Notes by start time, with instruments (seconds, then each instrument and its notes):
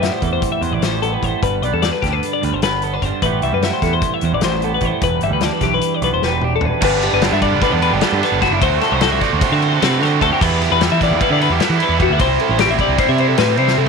Already playing: clean electric guitar A2 G3
0.02 clean electric guitar B3 E5, snare, closed hi-hat
0.13 clean electric guitar C5
0.22 picked electric bass E2, clean electric guitar E3 A4, kick, closed hi-hat
0.33 clean electric guitar C5
0.42 kick, closed hi-hat
0.52 clean electric guitar E5
0.61 picked electric bass E2, clean electric guitar E2 C5, closed hi-hat
0.71 picked electric bass A1, clean electric guitar D5
0.81 picked electric bass A1, clean electric guitar G3 C5, snare, closed hi-hat
1.02 clean electric guitar B3 A4, closed hi-hat
1.13 clean electric guitar B4
1.21 picked electric bass A1, clean electric guitar A2 C5, kick, closed hi-hat
1.42 picked electric bass G1, clean electric guitar G2 B4, kick, closed hi-hat
1.62 picked electric bass B1, clean electric guitar B3 D5, closed hi-hat
1.73 picked electric bass E2, clean electric guitar A4
1.82 clean electric guitar D4 D5, snare, closed hi-hat
1.93 clean electric guitar B4
2.02 picked electric bass D2, clean electric guitar D3 G4, kick, snare, closed hi-hat
2.13 clean electric guitar B4
2.23 closed hi-hat
2.33 clean electric guitar D5
2.41 picked electric bass D2, clean electric guitar G2 B4, closed hi-hat
2.53 picked electric bass G1, clean electric guitar C5
2.62 picked electric bass G1, clean electric guitar B3 B4, snare, closed hi-hat
2.82 clean electric guitar B3 A4, closed hi-hat
2.94 clean electric guitar D4 B4
3.02 picked electric bass G1, clean electric guitar G2 C5, kick, closed hi-hat
3.22 picked electric bass A1, clean electric guitar A2 E3 G3 B3 G4 B4, kick, closed hi-hat
3.42 picked electric bass C2, clean electric guitar G3 E5, closed hi-hat
3.53 picked electric bass F#2, clean electric guitar B4
3.62 clean electric guitar B3 E5, snare, closed hi-hat
3.73 clean electric guitar C5
3.82 picked electric bass E2, clean electric guitar E3 A4, kick, snare, closed hi-hat
3.93 clean electric guitar C5
4.02 kick, closed hi-hat
4.14 clean electric guitar E5
4.21 picked electric bass E2, clean electric guitar E2 C5, closed hi-hat
4.33 picked electric bass A1, clean electric guitar D5
4.41 picked electric bass A1, clean electric guitar G3 C5, snare, closed hi-hat
4.62 clean electric guitar B3 A4, closed hi-hat
4.74 clean electric guitar B4
4.81 picked electric bass A1, clean electric guitar A2, kick, closed hi-hat
4.85 clean electric guitar C5
5.01 picked electric bass E1, clean electric guitar E2 B4, kick, closed hi-hat
5.21 picked electric bass G1, clean electric guitar G3 E5, closed hi-hat
5.31 picked electric bass D2, clean electric guitar B4
5.41 clean electric guitar D4 D5, snare, closed hi-hat
5.53 clean electric guitar B4
5.61 picked electric bass B1, clean electric guitar E3 G4, kick, snare, closed hi-hat
5.74 clean electric guitar B4
5.81 closed hi-hat
5.94 clean electric guitar D5
6.02 picked electric bass B1, clean electric guitar B2 B4, closed hi-hat
6.13 picked electric bass E1, clean electric guitar C5
6.22 picked electric bass E1, clean electric guitar G3 B4, snare
6.41 clean electric guitar D4 G4, mid tom
6.56 clean electric guitar A4
6.61 picked electric bass E1, clean electric guitar E2, floor tom
6.65 clean electric guitar B4
6.81 picked electric bass G1, overdriven electric guitar G2 D3 G3 B3 D4, clean electric guitar B4, kick, crash
7.02 clean electric guitar G4, ride
7.13 picked electric bass G1, clean electric guitar B4
7.21 overdriven electric guitar G2 D3 G3 B3 D4, clean electric guitar G4, snare, ride
7.32 picked electric bass G2, clean electric guitar E5
7.42 overdriven electric guitar G3 B3 D4, clean electric guitar D5, kick, ride
7.52 picked electric bass G1
7.61 overdriven electric guitar D3 G3 B3 D4, clean electric guitar B4, kick, snare, ride
7.72 picked electric bass E2, clean electric guitar D5
7.82 clean electric guitar B4, ride
7.93 picked electric bass G1, clean electric guitar G4
8.01 overdriven electric guitar D3 G3 B3 D4, clean electric guitar A4, snare, ride
8.12 picked electric bass G2
8.21 overdriven electric guitar G3 B3 D4, clean electric guitar B4, snare, ride
8.32 picked electric bass G1
8.40 overdriven electric guitar G2 D3 G3 B3 D4, clean electric guitar F#4, kick, snare, ride
8.51 picked electric bass F#1, clean electric guitar E4
8.61 picked electric bass D2, overdriven electric guitar D3 A3 C4 F#4, clean electric guitar C5, kick, ride
8.81 clean electric guitar A4, snare, ride
8.92 picked electric bass C2, clean electric guitar C5
9.01 overdriven electric guitar D3 A3 C4 F#4, clean electric guitar A4, snare, ride
9.11 picked electric bass C2, clean electric guitar E5
9.20 overdriven electric guitar A3 C4 F#4, clean electric guitar D5, kick, snare, ride
9.33 picked electric bass D2
9.41 overdriven electric guitar D3 A3 C4 F#4, clean electric guitar C5, kick, ride
9.52 picked electric bass D3, clean electric guitar E5
9.62 clean electric guitar C5, ride
9.74 clean electric guitar A4
9.80 picked electric bass C3, overdriven electric guitar D3 A3 C4 F#4, clean electric guitar B4, snare, ride
10.00 picked electric bass D3, overdriven electric guitar A3 C4 F#4, clean electric guitar C5, snare, ride
10.20 picked electric bass D2, overdriven electric guitar D3 A3 C4 F#4, clean electric guitar A4, kick, ride
10.33 clean electric guitar G4
10.40 picked electric bass E2, overdriven electric guitar E3 G3 B3 E4, clean electric guitar B4, kick, crash
10.61 clean electric guitar G4, snare, ride
10.71 picked electric bass E2, clean electric guitar B4
10.80 overdriven electric guitar E3 G3 B3 E4, clean electric guitar G4, snare, ride
10.92 picked electric bass E3, clean electric guitar E5
11.00 overdriven electric guitar G3 B3 E4, clean electric guitar D5, kick, snare, ride
11.11 picked electric bass E2
11.21 overdriven electric guitar E3 G3 B3 E4, clean electric guitar B4, kick, ride
11.30 picked electric bass D3, clean electric guitar D5
11.41 clean electric guitar B4, ride
11.50 picked electric bass E2, clean electric guitar G4
11.60 overdriven electric guitar E3 G3 B3 E4, clean electric guitar A4, snare, ride
11.70 picked electric bass E3
11.78 overdriven electric guitar G3 B3 E4, ride
11.83 clean electric guitar B4
11.89 picked electric bass E2
11.98 overdriven electric guitar E3 G3 B3 E4, kick, ride
12.03 clean electric guitar F#4
12.10 picked electric bass D2, clean electric guitar E4
12.19 picked electric bass C2, overdriven electric guitar C3 G3 C4 E4, clean electric guitar C5, kick, ride
12.39 clean electric guitar A4, ride
12.49 picked electric bass A1, clean electric guitar C5
12.57 overdriven electric guitar C3 G3 C4 E4, clean electric guitar G4, snare, ride
12.69 picked electric bass A1, clean electric guitar E5
12.78 overdriven electric guitar G3 C4 E4, clean electric guitar D5, kick, ride
12.89 picked electric bass C2
12.98 overdriven electric guitar C3 G3 C4 E4, clean electric guitar C5, kick, ride
13.09 picked electric bass C3, clean electric guitar E5
13.18 clean electric guitar C5, ride
13.29 clean electric guitar A4
13.38 picked electric bass A2, overdriven electric guitar C3 G3 C4 E4, clean electric guitar B4, snare, ride
13.57 picked electric bass C3, overdriven electric guitar G3 C4 E4, clean electric guitar C5, ride
13.68 snare
13.78 picked electric bass C3, overdriven electric guitar C3 G3 C4 E4, clean electric guitar A4